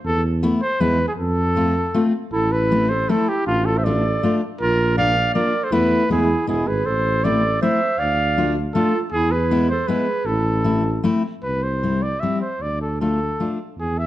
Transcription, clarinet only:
2.33 2.53 E4 medium
2.53 2.92 E4 medium
2.91 3.12 A4 medium
3.10 3.29 E4 medium
3.29 3.46 E4 medium
3.47 3.67 D4 medium
3.66 3.80 F4 medium
3.78 3.87 C5 medium
3.86 4.42 A4 medium
4.60 4.95 F4 medium
4.97 5.33 D5 medium
5.35 5.66 A#4 medium
5.65 5.73 A4 medium
5.72 6.09 E4 medium
6.10 6.45 E4 medium
6.48 6.69 E4 medium
6.67 6.88 G#4 medium
6.86 7.23 A4 medium
7.23 7.61 A4 medium
7.62 8.01 C5 medium
7.99 8.56 D5 medium
8.77 9.02 F4 medium
9.14 9.35 E4 medium
9.34 9.70 G#4 medium
9.71 9.90 A4 medium
9.89 10.29 G#4 medium
10.28 11.05 E4 medium

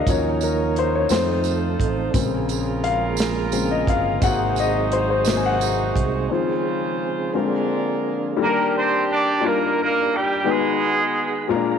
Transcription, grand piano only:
0.07 1.07 F3 medium
0.07 1.07 F#3 soft
0.07 1.07 C#4 medium
0.07 0.40 C#5 medium
0.44 0.78 A#4 medium
0.79 0.95 C5 medium
0.96 1.12 C#5 medium
1.09 2.10 D#3 soft
1.09 2.10 A3 soft
1.09 2.10 C4 medium
1.09 1.76 C5 medium
2.14 2.60 C#3 medium
2.14 2.60 G#3 soft
2.14 2.61 C4 medium
2.84 3.73 F5 medium
3.52 3.84 C#3 soft
3.52 3.84 G#3 soft
3.52 3.84 C4 soft
3.71 3.88 D#5 medium
3.89 4.21 F5 loud
4.22 5.25 C3 medium
4.22 5.26 F#3 soft
4.22 5.26 A#3 medium
4.22 4.58 F#5 medium
4.60 4.91 D#5 medium
4.93 4.98 C5 medium
5.10 5.38 C5 medium
5.26 5.57 C3 soft
5.26 5.58 F#3 soft
5.26 5.58 A#3 medium
5.37 5.44 G#5 medium
5.46 6.45 F#5 medium
6.30 7.30 D#3 soft
6.30 7.31 F3 medium
6.30 7.31 C4 medium
7.34 8.34 D3 medium
7.34 8.34 G#3 medium
7.34 8.35 C4 medium
8.36 9.38 D#3 medium
8.36 9.04 G3 medium
8.36 9.04 A#3 medium
8.36 9.04 D4 medium
8.36 9.05 G4 medium
8.36 8.45 A4 medium
8.45 9.08 A#4 medium
9.40 10.08 G3 medium
9.40 10.08 A#3 medium
9.40 10.08 D4 medium
9.40 10.09 D#4 medium
9.40 10.09 F4 medium
10.44 11.45 D#3 medium
10.44 11.12 G#3 medium
10.44 11.12 B3 medium
10.44 11.12 D#4 medium
10.44 11.12 F#4 medium
10.44 11.13 B4 medium
11.48 11.79 A#2 medium
11.48 11.79 G#3 medium
11.48 11.79 A#3 medium
11.48 11.56 C4 medium
11.48 11.79 F4 medium
11.48 11.79 A#4 loud
11.55 11.79 D4 medium

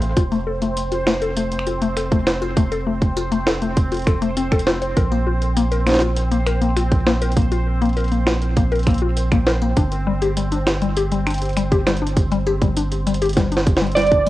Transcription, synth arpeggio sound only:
0.17 0.22 F4 medium
0.32 0.37 A3 loud
0.47 0.52 A4 loud
0.62 0.75 A3 medium
0.92 0.97 F4 medium
1.07 1.12 A3 loud
1.22 1.27 A4 loud
1.37 1.50 A3 medium
1.67 1.72 F4 medium
1.82 1.87 A3 loud
1.97 2.02 A4 loud
2.12 2.25 A3 medium
2.42 2.47 F4 medium
2.57 2.62 A3 loud
2.72 2.77 A4 loud
2.87 3.00 A3 medium
3.17 3.22 F4 medium
3.32 3.37 A3 loud
3.47 3.52 A4 loud
3.62 3.75 A3 medium
3.92 3.97 F4 medium
4.07 4.16 A4 medium
4.22 4.31 A3 loud
4.37 4.42 C4 medium
4.52 4.61 A4 loud
4.67 4.80 F4 medium
4.82 4.87 C5 medium
4.97 5.02 A#4 loud
5.12 5.25 A#3 medium
5.27 5.32 F4 medium
5.57 5.62 A#3 loud
5.72 5.77 A#4 loud
5.87 6.00 A#3 medium
6.02 6.07 F4 medium
6.32 6.37 A#3 loud
6.47 6.52 A#4 loud
6.62 6.75 A#3 medium
6.77 6.82 F4 medium
7.07 7.12 A#3 loud
7.22 7.27 A#4 loud
7.37 7.50 A#3 medium
7.52 7.57 F4 medium
7.82 7.87 A#3 loud
7.97 8.02 A#4 loud
8.12 8.25 A#3 medium
8.27 8.32 F4 medium
8.57 8.62 A#3 loud
8.72 8.77 A#4 loud
8.87 9.00 A#3 medium
9.02 9.07 F4 medium
9.32 9.37 A#3 loud
9.47 9.52 A#4 loud
9.62 9.75 A#3 medium
9.77 9.82 D4 medium
10.07 10.12 G3 loud
10.22 10.27 G4 loud
10.37 10.50 G3 medium
10.52 10.57 D4 medium
10.82 10.87 G3 loud
10.97 11.02 G4 loud
11.12 11.25 G3 medium
11.27 11.32 D4 medium
11.57 11.62 G3 loud
11.72 11.77 G4 loud
11.87 12.00 G3 medium
12.02 12.07 D4 medium
12.32 12.37 G3 loud
12.47 12.52 G4 loud
12.62 12.75 G3 medium
12.77 12.82 D4 medium
13.07 13.12 G3 loud
13.22 13.27 G4 loud
13.37 13.50 G3 medium
13.52 13.57 D4 medium
13.82 13.87 G3 medium
13.97 14.10 G3 medium
14.12 14.21 D4 medium

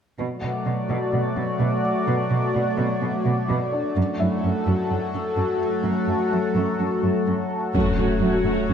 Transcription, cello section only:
0.18 0.26 B2 soft
0.42 0.50 B2 soft
0.66 0.74 B2 soft
0.89 0.97 B2 soft
1.13 1.21 B2 soft
1.36 1.44 B2 soft
1.60 1.68 B2 soft
2.07 2.15 B2 soft
2.31 2.39 B2 soft
2.55 2.63 B2 soft
2.78 2.86 B2 medium
3.02 3.10 B2 soft
3.26 3.34 B2 soft
3.49 3.57 B2 medium
3.96 4.04 F#2 medium
4.20 4.28 F#2 soft
4.44 4.52 F#2 soft
4.66 4.74 F#2 medium
4.90 4.98 F#2 soft
5.14 5.22 F#2 soft
5.37 5.45 F#2 medium
5.84 5.92 F#2 medium
6.08 6.16 F#2 soft
6.32 6.40 F#2 soft
6.55 6.63 F#2 medium
6.79 6.87 F#2 soft
7.03 7.11 F#2 soft
7.26 7.34 F#2 soft
7.74 7.82 F#2 soft
7.98 8.06 F#2 soft
8.21 8.29 F#2 soft
8.45 8.53 F#2 soft
8.69 8.73 F#2 soft

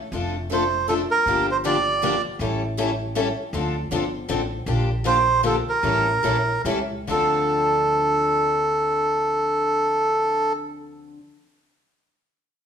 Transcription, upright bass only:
0.12 1.03 F1 medium
1.26 2.17 G1 medium
2.39 3.30 A1 medium
3.53 3.83 D2 medium
3.91 4.23 G1 medium
4.29 4.61 A1 medium
4.66 5.59 A#1 medium
5.83 6.15 A1 medium
6.24 6.59 A#1 medium
6.65 7.02 C#2 medium
7.08 11.14 D2 medium

